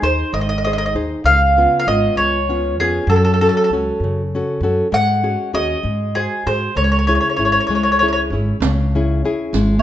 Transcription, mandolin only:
0, 0, Header, 1, 2, 480
1, 0, Start_track
1, 0, Tempo, 613497
1, 977, Time_signature, 6, 3, 24, 8
1, 7686, End_track
2, 0, Start_track
2, 0, Title_t, "Mandolin"
2, 0, Program_c, 0, 25
2, 26, Note_on_c, 0, 72, 74
2, 242, Note_off_c, 0, 72, 0
2, 264, Note_on_c, 0, 75, 68
2, 313, Note_off_c, 0, 75, 0
2, 322, Note_on_c, 0, 75, 49
2, 376, Note_off_c, 0, 75, 0
2, 384, Note_on_c, 0, 75, 67
2, 437, Note_off_c, 0, 75, 0
2, 455, Note_on_c, 0, 75, 53
2, 495, Note_off_c, 0, 75, 0
2, 504, Note_on_c, 0, 75, 68
2, 556, Note_off_c, 0, 75, 0
2, 573, Note_on_c, 0, 75, 53
2, 603, Note_off_c, 0, 75, 0
2, 613, Note_on_c, 0, 75, 65
2, 662, Note_off_c, 0, 75, 0
2, 672, Note_on_c, 0, 75, 54
2, 725, Note_off_c, 0, 75, 0
2, 983, Note_on_c, 0, 77, 84
2, 1384, Note_off_c, 0, 77, 0
2, 1405, Note_on_c, 0, 77, 65
2, 1461, Note_off_c, 0, 77, 0
2, 1469, Note_on_c, 0, 75, 76
2, 1697, Note_off_c, 0, 75, 0
2, 1700, Note_on_c, 0, 73, 69
2, 2152, Note_off_c, 0, 73, 0
2, 2191, Note_on_c, 0, 68, 70
2, 2405, Note_off_c, 0, 68, 0
2, 2423, Note_on_c, 0, 69, 65
2, 2462, Note_off_c, 0, 69, 0
2, 2471, Note_on_c, 0, 69, 46
2, 2531, Note_off_c, 0, 69, 0
2, 2540, Note_on_c, 0, 69, 55
2, 2596, Note_off_c, 0, 69, 0
2, 2611, Note_on_c, 0, 69, 49
2, 2660, Note_off_c, 0, 69, 0
2, 2670, Note_on_c, 0, 69, 62
2, 2719, Note_off_c, 0, 69, 0
2, 2731, Note_on_c, 0, 69, 47
2, 2778, Note_off_c, 0, 69, 0
2, 2793, Note_on_c, 0, 69, 54
2, 2838, Note_off_c, 0, 69, 0
2, 2850, Note_on_c, 0, 69, 54
2, 2895, Note_off_c, 0, 69, 0
2, 3865, Note_on_c, 0, 78, 93
2, 4312, Note_off_c, 0, 78, 0
2, 4339, Note_on_c, 0, 75, 94
2, 4813, Note_on_c, 0, 68, 70
2, 4836, Note_off_c, 0, 75, 0
2, 5059, Note_off_c, 0, 68, 0
2, 5060, Note_on_c, 0, 72, 69
2, 5277, Note_off_c, 0, 72, 0
2, 5296, Note_on_c, 0, 73, 62
2, 5343, Note_off_c, 0, 73, 0
2, 5352, Note_on_c, 0, 73, 50
2, 5402, Note_off_c, 0, 73, 0
2, 5412, Note_on_c, 0, 73, 53
2, 5458, Note_off_c, 0, 73, 0
2, 5467, Note_on_c, 0, 73, 50
2, 5524, Note_off_c, 0, 73, 0
2, 5533, Note_on_c, 0, 73, 55
2, 5586, Note_off_c, 0, 73, 0
2, 5595, Note_on_c, 0, 73, 42
2, 5628, Note_off_c, 0, 73, 0
2, 5638, Note_on_c, 0, 73, 45
2, 5698, Note_off_c, 0, 73, 0
2, 5708, Note_on_c, 0, 73, 45
2, 5753, Note_off_c, 0, 73, 0
2, 5763, Note_on_c, 0, 73, 52
2, 5818, Note_off_c, 0, 73, 0
2, 5829, Note_on_c, 0, 73, 40
2, 5875, Note_off_c, 0, 73, 0
2, 5885, Note_on_c, 0, 73, 58
2, 5937, Note_off_c, 0, 73, 0
2, 5949, Note_on_c, 0, 73, 45
2, 5990, Note_off_c, 0, 73, 0
2, 5999, Note_on_c, 0, 73, 45
2, 6054, Note_off_c, 0, 73, 0
2, 6064, Note_on_c, 0, 73, 41
2, 6118, Note_off_c, 0, 73, 0
2, 6129, Note_on_c, 0, 73, 47
2, 6181, Note_off_c, 0, 73, 0
2, 6195, Note_on_c, 0, 73, 43
2, 6243, Note_off_c, 0, 73, 0
2, 6252, Note_on_c, 0, 73, 55
2, 6302, Note_off_c, 0, 73, 0
2, 6325, Note_on_c, 0, 73, 42
2, 6349, Note_off_c, 0, 73, 0
2, 6358, Note_on_c, 0, 73, 54
2, 6411, Note_off_c, 0, 73, 0
2, 7686, End_track
0, 0, End_of_file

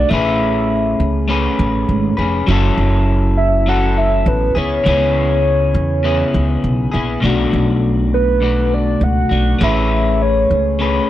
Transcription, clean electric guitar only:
0, 0, Header, 1, 2, 480
1, 0, Start_track
1, 0, Tempo, 594059
1, 86, Time_signature, 4, 2, 24, 8
1, 8968, End_track
2, 0, Start_track
2, 0, Title_t, "Clean electric guitar"
2, 0, Program_c, 0, 27
2, 0, Note_on_c, 0, 62, 43
2, 72, Note_on_c, 0, 57, 66
2, 84, Note_off_c, 0, 62, 0
2, 88, Note_on_c, 0, 61, 74
2, 101, Note_on_c, 0, 68, 78
2, 110, Note_on_c, 0, 71, 85
2, 1029, Note_off_c, 0, 57, 0
2, 1032, Note_on_c, 0, 57, 65
2, 1036, Note_off_c, 0, 68, 0
2, 1037, Note_off_c, 0, 61, 0
2, 1041, Note_on_c, 0, 61, 69
2, 1045, Note_off_c, 0, 71, 0
2, 1046, Note_on_c, 0, 68, 64
2, 1055, Note_on_c, 0, 71, 70
2, 1743, Note_off_c, 0, 71, 0
2, 1752, Note_on_c, 0, 71, 52
2, 1759, Note_off_c, 0, 68, 0
2, 1769, Note_on_c, 0, 68, 46
2, 1775, Note_off_c, 0, 61, 0
2, 1777, Note_off_c, 0, 57, 0
2, 1778, Note_on_c, 0, 61, 43
2, 1992, Note_on_c, 0, 54, 81
2, 1999, Note_off_c, 0, 61, 0
2, 1999, Note_off_c, 0, 71, 0
2, 2007, Note_off_c, 0, 68, 0
2, 2008, Note_on_c, 0, 61, 81
2, 2018, Note_on_c, 0, 64, 78
2, 2030, Note_on_c, 0, 69, 87
2, 2949, Note_off_c, 0, 54, 0
2, 2958, Note_on_c, 0, 54, 55
2, 2965, Note_off_c, 0, 61, 0
2, 2968, Note_on_c, 0, 61, 59
2, 2974, Note_off_c, 0, 69, 0
2, 2975, Note_off_c, 0, 64, 0
2, 2978, Note_on_c, 0, 64, 59
2, 2983, Note_on_c, 0, 69, 59
2, 3673, Note_off_c, 0, 69, 0
2, 3676, Note_on_c, 0, 68, 50
2, 3682, Note_off_c, 0, 54, 0
2, 3685, Note_off_c, 0, 64, 0
2, 3688, Note_on_c, 0, 64, 44
2, 3696, Note_off_c, 0, 61, 0
2, 3699, Note_on_c, 0, 59, 42
2, 3908, Note_on_c, 0, 49, 66
2, 3914, Note_off_c, 0, 59, 0
2, 3920, Note_off_c, 0, 68, 0
2, 3924, Note_on_c, 0, 59, 76
2, 3926, Note_off_c, 0, 64, 0
2, 3935, Note_on_c, 0, 64, 75
2, 3946, Note_on_c, 0, 68, 79
2, 4862, Note_off_c, 0, 49, 0
2, 4872, Note_on_c, 0, 49, 58
2, 4878, Note_off_c, 0, 59, 0
2, 4881, Note_off_c, 0, 64, 0
2, 4882, Note_on_c, 0, 59, 65
2, 4887, Note_off_c, 0, 68, 0
2, 4891, Note_on_c, 0, 64, 64
2, 4897, Note_on_c, 0, 68, 58
2, 5578, Note_off_c, 0, 68, 0
2, 5587, Note_on_c, 0, 68, 54
2, 5594, Note_off_c, 0, 64, 0
2, 5599, Note_off_c, 0, 49, 0
2, 5604, Note_on_c, 0, 64, 48
2, 5609, Note_off_c, 0, 59, 0
2, 5612, Note_on_c, 0, 59, 45
2, 5820, Note_on_c, 0, 47, 86
2, 5834, Note_on_c, 0, 57, 80
2, 5836, Note_off_c, 0, 68, 0
2, 5844, Note_off_c, 0, 59, 0
2, 5844, Note_off_c, 0, 64, 0
2, 5847, Note_on_c, 0, 62, 83
2, 5860, Note_on_c, 0, 66, 96
2, 6781, Note_off_c, 0, 47, 0
2, 6790, Note_on_c, 0, 47, 54
2, 6795, Note_off_c, 0, 62, 0
2, 6798, Note_off_c, 0, 57, 0
2, 6801, Note_on_c, 0, 57, 53
2, 6805, Note_off_c, 0, 66, 0
2, 6805, Note_on_c, 0, 62, 58
2, 6815, Note_on_c, 0, 66, 62
2, 7500, Note_off_c, 0, 66, 0
2, 7509, Note_on_c, 0, 66, 50
2, 7515, Note_off_c, 0, 62, 0
2, 7518, Note_off_c, 0, 47, 0
2, 7525, Note_on_c, 0, 62, 40
2, 7531, Note_off_c, 0, 57, 0
2, 7535, Note_on_c, 0, 57, 38
2, 7736, Note_off_c, 0, 57, 0
2, 7746, Note_on_c, 0, 57, 72
2, 7758, Note_off_c, 0, 66, 0
2, 7759, Note_off_c, 0, 62, 0
2, 7762, Note_on_c, 0, 61, 74
2, 7773, Note_on_c, 0, 68, 67
2, 7784, Note_on_c, 0, 71, 84
2, 8714, Note_off_c, 0, 57, 0
2, 8717, Note_on_c, 0, 57, 54
2, 8720, Note_off_c, 0, 61, 0
2, 8721, Note_off_c, 0, 68, 0
2, 8723, Note_on_c, 0, 61, 57
2, 8729, Note_off_c, 0, 71, 0
2, 8731, Note_on_c, 0, 68, 53
2, 8739, Note_on_c, 0, 71, 59
2, 8968, Note_off_c, 0, 57, 0
2, 8968, Note_off_c, 0, 61, 0
2, 8968, Note_off_c, 0, 68, 0
2, 8968, Note_off_c, 0, 71, 0
2, 8968, End_track
0, 0, End_of_file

